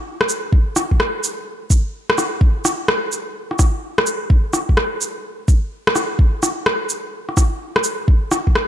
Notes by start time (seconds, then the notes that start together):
0.21 cross-stick
0.29 shaker
0.52 kick
0.76 cross-stick, shaker
0.91 kick
1.00 cross-stick
1.24 shaker
1.70 kick, shaker
2.10 cross-stick
2.18 cross-stick, shaker
2.41 kick
2.65 cross-stick, shaker
2.88 cross-stick
3.12 shaker
3.51 cross-stick
3.59 kick, cross-stick, shaker
3.98 cross-stick
4.06 shaker
4.30 kick
4.53 cross-stick, shaker
4.69 kick
4.77 cross-stick
5.01 shaker
5.48 kick, shaker
5.87 cross-stick
5.96 cross-stick, shaker
6.19 kick
6.43 cross-stick, shaker
6.66 cross-stick
6.90 shaker
7.29 cross-stick
7.37 kick, cross-stick, shaker
7.76 cross-stick
7.84 shaker
8.08 kick
8.32 cross-stick, shaker
8.47 kick
8.55 cross-stick